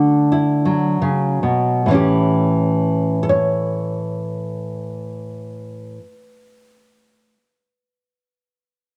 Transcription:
Already playing: D3 A3
0.32 E4
0.65 F#3
1.02 C#3
1.43 B2
1.86 A2 E3
1.91 C#4 E4 G4
3.23 A4
3.29 C#5

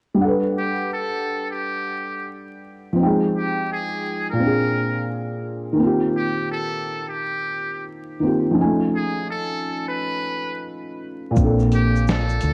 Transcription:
0.14 G3 D4
0.21 A4 F#5
0.28 B4
0.58 G4
0.93 A4
1.51 G4
2.93 F3 C4
3.00 D#4 G5
3.06 G#3
3.37 G4
3.72 G#4
4.30 A#2 A#4
4.36 A#3 C4
4.43 D4 G#4
5.73 D#3 A#3
5.79 C4 F4
5.86 G4
6.16 G4
6.51 A4
7.09 G4
8.20 D#3 A#3 C4
8.25 F4 G4
8.51 F3 C#4
8.58 D#4 G#5
8.65 A3
8.95 G#4
9.30 A4
9.88 B4
11.31 A#2 A#3
11.37 A#1 C4, kick, shaker
11.41 D4 A4
11.59 shaker
11.72 G4, closed hi-hat, shaker
11.96 shaker
12.07 A4, snare, shaker
12.29 shaker
12.41 D2, closed hi-hat, shaker

